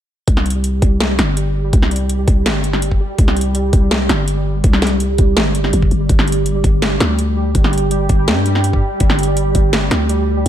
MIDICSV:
0, 0, Header, 1, 4, 480
1, 0, Start_track
1, 0, Tempo, 363636
1, 364, Time_signature, 4, 2, 24, 8
1, 13839, End_track
2, 0, Start_track
2, 0, Title_t, "Synth texture"
2, 0, Program_c, 0, 99
2, 358, Note_on_c, 0, 55, 80
2, 358, Note_on_c, 0, 67, 80
2, 13839, Note_off_c, 0, 55, 0
2, 13839, Note_off_c, 0, 67, 0
2, 13839, End_track
3, 0, Start_track
3, 0, Title_t, "808-style bass"
3, 0, Program_c, 1, 38
3, 364, Note_on_c, 1, 36, 92
3, 1070, Note_off_c, 1, 36, 0
3, 1085, Note_on_c, 1, 36, 88
3, 1550, Note_off_c, 1, 36, 0
3, 1566, Note_on_c, 1, 31, 96
3, 2271, Note_off_c, 1, 31, 0
3, 2286, Note_on_c, 1, 36, 96
3, 2990, Note_off_c, 1, 36, 0
3, 3004, Note_on_c, 1, 36, 91
3, 3245, Note_on_c, 1, 31, 96
3, 3265, Note_off_c, 1, 36, 0
3, 3950, Note_off_c, 1, 31, 0
3, 4205, Note_on_c, 1, 36, 95
3, 4910, Note_off_c, 1, 36, 0
3, 4924, Note_on_c, 1, 36, 90
3, 5390, Note_off_c, 1, 36, 0
3, 5404, Note_on_c, 1, 31, 97
3, 6109, Note_off_c, 1, 31, 0
3, 6123, Note_on_c, 1, 36, 96
3, 6829, Note_off_c, 1, 36, 0
3, 6845, Note_on_c, 1, 36, 88
3, 7086, Note_on_c, 1, 31, 94
3, 7106, Note_off_c, 1, 36, 0
3, 7561, Note_off_c, 1, 31, 0
3, 7569, Note_on_c, 1, 31, 97
3, 7788, Note_off_c, 1, 31, 0
3, 7807, Note_on_c, 1, 31, 79
3, 8027, Note_off_c, 1, 31, 0
3, 8046, Note_on_c, 1, 31, 94
3, 8750, Note_off_c, 1, 31, 0
3, 8766, Note_on_c, 1, 31, 87
3, 9231, Note_off_c, 1, 31, 0
3, 9246, Note_on_c, 1, 38, 95
3, 9951, Note_off_c, 1, 38, 0
3, 9966, Note_on_c, 1, 31, 95
3, 10670, Note_off_c, 1, 31, 0
3, 10685, Note_on_c, 1, 31, 92
3, 10923, Note_on_c, 1, 43, 95
3, 10943, Note_off_c, 1, 31, 0
3, 11629, Note_off_c, 1, 43, 0
3, 11886, Note_on_c, 1, 31, 99
3, 12590, Note_off_c, 1, 31, 0
3, 12606, Note_on_c, 1, 31, 91
3, 13071, Note_off_c, 1, 31, 0
3, 13082, Note_on_c, 1, 38, 95
3, 13789, Note_off_c, 1, 38, 0
3, 13839, End_track
4, 0, Start_track
4, 0, Title_t, "Drums"
4, 364, Note_on_c, 9, 36, 108
4, 364, Note_on_c, 9, 42, 76
4, 487, Note_on_c, 9, 40, 47
4, 496, Note_off_c, 9, 36, 0
4, 496, Note_off_c, 9, 42, 0
4, 603, Note_on_c, 9, 42, 48
4, 619, Note_off_c, 9, 40, 0
4, 665, Note_off_c, 9, 42, 0
4, 665, Note_on_c, 9, 42, 62
4, 797, Note_off_c, 9, 42, 0
4, 843, Note_on_c, 9, 42, 74
4, 975, Note_off_c, 9, 42, 0
4, 1084, Note_on_c, 9, 36, 95
4, 1085, Note_on_c, 9, 42, 62
4, 1216, Note_off_c, 9, 36, 0
4, 1217, Note_off_c, 9, 42, 0
4, 1326, Note_on_c, 9, 38, 105
4, 1326, Note_on_c, 9, 42, 73
4, 1458, Note_off_c, 9, 38, 0
4, 1458, Note_off_c, 9, 42, 0
4, 1568, Note_on_c, 9, 40, 74
4, 1568, Note_on_c, 9, 42, 61
4, 1700, Note_off_c, 9, 40, 0
4, 1700, Note_off_c, 9, 42, 0
4, 1808, Note_on_c, 9, 42, 78
4, 1940, Note_off_c, 9, 42, 0
4, 2285, Note_on_c, 9, 36, 112
4, 2285, Note_on_c, 9, 42, 77
4, 2409, Note_on_c, 9, 40, 47
4, 2417, Note_off_c, 9, 36, 0
4, 2417, Note_off_c, 9, 42, 0
4, 2525, Note_on_c, 9, 42, 46
4, 2541, Note_off_c, 9, 40, 0
4, 2587, Note_off_c, 9, 42, 0
4, 2587, Note_on_c, 9, 42, 62
4, 2719, Note_off_c, 9, 42, 0
4, 2765, Note_on_c, 9, 42, 76
4, 2897, Note_off_c, 9, 42, 0
4, 3004, Note_on_c, 9, 36, 102
4, 3005, Note_on_c, 9, 42, 67
4, 3136, Note_off_c, 9, 36, 0
4, 3137, Note_off_c, 9, 42, 0
4, 3246, Note_on_c, 9, 38, 111
4, 3246, Note_on_c, 9, 42, 78
4, 3378, Note_off_c, 9, 38, 0
4, 3378, Note_off_c, 9, 42, 0
4, 3484, Note_on_c, 9, 42, 63
4, 3609, Note_on_c, 9, 40, 34
4, 3616, Note_off_c, 9, 42, 0
4, 3725, Note_on_c, 9, 42, 78
4, 3741, Note_off_c, 9, 40, 0
4, 3848, Note_on_c, 9, 36, 57
4, 3857, Note_off_c, 9, 42, 0
4, 3980, Note_off_c, 9, 36, 0
4, 4204, Note_on_c, 9, 36, 114
4, 4204, Note_on_c, 9, 42, 79
4, 4328, Note_on_c, 9, 40, 45
4, 4336, Note_off_c, 9, 36, 0
4, 4336, Note_off_c, 9, 42, 0
4, 4443, Note_on_c, 9, 42, 48
4, 4460, Note_off_c, 9, 40, 0
4, 4504, Note_off_c, 9, 42, 0
4, 4504, Note_on_c, 9, 42, 62
4, 4636, Note_off_c, 9, 42, 0
4, 4683, Note_on_c, 9, 42, 76
4, 4815, Note_off_c, 9, 42, 0
4, 4923, Note_on_c, 9, 42, 65
4, 4924, Note_on_c, 9, 36, 102
4, 5055, Note_off_c, 9, 42, 0
4, 5056, Note_off_c, 9, 36, 0
4, 5163, Note_on_c, 9, 38, 116
4, 5163, Note_on_c, 9, 42, 74
4, 5295, Note_off_c, 9, 38, 0
4, 5295, Note_off_c, 9, 42, 0
4, 5404, Note_on_c, 9, 40, 72
4, 5404, Note_on_c, 9, 42, 64
4, 5536, Note_off_c, 9, 40, 0
4, 5536, Note_off_c, 9, 42, 0
4, 5645, Note_on_c, 9, 42, 77
4, 5777, Note_off_c, 9, 42, 0
4, 6123, Note_on_c, 9, 42, 74
4, 6124, Note_on_c, 9, 36, 115
4, 6249, Note_on_c, 9, 40, 46
4, 6255, Note_off_c, 9, 42, 0
4, 6256, Note_off_c, 9, 36, 0
4, 6363, Note_on_c, 9, 38, 60
4, 6363, Note_on_c, 9, 42, 45
4, 6381, Note_off_c, 9, 40, 0
4, 6425, Note_off_c, 9, 42, 0
4, 6425, Note_on_c, 9, 42, 59
4, 6495, Note_off_c, 9, 38, 0
4, 6557, Note_off_c, 9, 42, 0
4, 6603, Note_on_c, 9, 42, 71
4, 6735, Note_off_c, 9, 42, 0
4, 6842, Note_on_c, 9, 42, 61
4, 6844, Note_on_c, 9, 36, 98
4, 6974, Note_off_c, 9, 42, 0
4, 6976, Note_off_c, 9, 36, 0
4, 7084, Note_on_c, 9, 38, 112
4, 7084, Note_on_c, 9, 42, 72
4, 7216, Note_off_c, 9, 38, 0
4, 7216, Note_off_c, 9, 42, 0
4, 7323, Note_on_c, 9, 42, 61
4, 7446, Note_on_c, 9, 40, 33
4, 7455, Note_off_c, 9, 42, 0
4, 7564, Note_on_c, 9, 42, 74
4, 7578, Note_off_c, 9, 40, 0
4, 7689, Note_on_c, 9, 36, 60
4, 7696, Note_off_c, 9, 42, 0
4, 7804, Note_on_c, 9, 42, 34
4, 7821, Note_off_c, 9, 36, 0
4, 7936, Note_off_c, 9, 42, 0
4, 8044, Note_on_c, 9, 36, 109
4, 8045, Note_on_c, 9, 42, 71
4, 8169, Note_on_c, 9, 40, 45
4, 8176, Note_off_c, 9, 36, 0
4, 8177, Note_off_c, 9, 42, 0
4, 8284, Note_on_c, 9, 42, 44
4, 8301, Note_off_c, 9, 40, 0
4, 8347, Note_off_c, 9, 42, 0
4, 8347, Note_on_c, 9, 42, 59
4, 8479, Note_off_c, 9, 42, 0
4, 8525, Note_on_c, 9, 42, 70
4, 8657, Note_off_c, 9, 42, 0
4, 8765, Note_on_c, 9, 36, 94
4, 8767, Note_on_c, 9, 42, 60
4, 8897, Note_off_c, 9, 36, 0
4, 8899, Note_off_c, 9, 42, 0
4, 9006, Note_on_c, 9, 38, 108
4, 9006, Note_on_c, 9, 42, 68
4, 9138, Note_off_c, 9, 38, 0
4, 9138, Note_off_c, 9, 42, 0
4, 9246, Note_on_c, 9, 40, 69
4, 9246, Note_on_c, 9, 42, 59
4, 9378, Note_off_c, 9, 40, 0
4, 9378, Note_off_c, 9, 42, 0
4, 9486, Note_on_c, 9, 42, 70
4, 9618, Note_off_c, 9, 42, 0
4, 9964, Note_on_c, 9, 42, 71
4, 9965, Note_on_c, 9, 36, 108
4, 10089, Note_on_c, 9, 40, 45
4, 10096, Note_off_c, 9, 42, 0
4, 10097, Note_off_c, 9, 36, 0
4, 10203, Note_on_c, 9, 42, 45
4, 10221, Note_off_c, 9, 40, 0
4, 10264, Note_off_c, 9, 42, 0
4, 10264, Note_on_c, 9, 42, 58
4, 10396, Note_off_c, 9, 42, 0
4, 10441, Note_on_c, 9, 42, 69
4, 10573, Note_off_c, 9, 42, 0
4, 10683, Note_on_c, 9, 42, 61
4, 10685, Note_on_c, 9, 36, 95
4, 10815, Note_off_c, 9, 42, 0
4, 10817, Note_off_c, 9, 36, 0
4, 10927, Note_on_c, 9, 38, 107
4, 10927, Note_on_c, 9, 42, 68
4, 11059, Note_off_c, 9, 38, 0
4, 11059, Note_off_c, 9, 42, 0
4, 11163, Note_on_c, 9, 42, 60
4, 11290, Note_on_c, 9, 40, 35
4, 11295, Note_off_c, 9, 42, 0
4, 11405, Note_on_c, 9, 42, 74
4, 11422, Note_off_c, 9, 40, 0
4, 11529, Note_on_c, 9, 36, 56
4, 11537, Note_off_c, 9, 42, 0
4, 11661, Note_off_c, 9, 36, 0
4, 11882, Note_on_c, 9, 42, 75
4, 11885, Note_on_c, 9, 36, 104
4, 12008, Note_on_c, 9, 40, 48
4, 12014, Note_off_c, 9, 42, 0
4, 12017, Note_off_c, 9, 36, 0
4, 12126, Note_on_c, 9, 42, 46
4, 12140, Note_off_c, 9, 40, 0
4, 12185, Note_off_c, 9, 42, 0
4, 12185, Note_on_c, 9, 42, 60
4, 12317, Note_off_c, 9, 42, 0
4, 12364, Note_on_c, 9, 42, 72
4, 12496, Note_off_c, 9, 42, 0
4, 12603, Note_on_c, 9, 42, 63
4, 12605, Note_on_c, 9, 36, 91
4, 12735, Note_off_c, 9, 42, 0
4, 12737, Note_off_c, 9, 36, 0
4, 12843, Note_on_c, 9, 38, 105
4, 12843, Note_on_c, 9, 42, 72
4, 12975, Note_off_c, 9, 38, 0
4, 12975, Note_off_c, 9, 42, 0
4, 13083, Note_on_c, 9, 40, 77
4, 13083, Note_on_c, 9, 42, 61
4, 13215, Note_off_c, 9, 40, 0
4, 13215, Note_off_c, 9, 42, 0
4, 13324, Note_on_c, 9, 42, 74
4, 13456, Note_off_c, 9, 42, 0
4, 13839, End_track
0, 0, End_of_file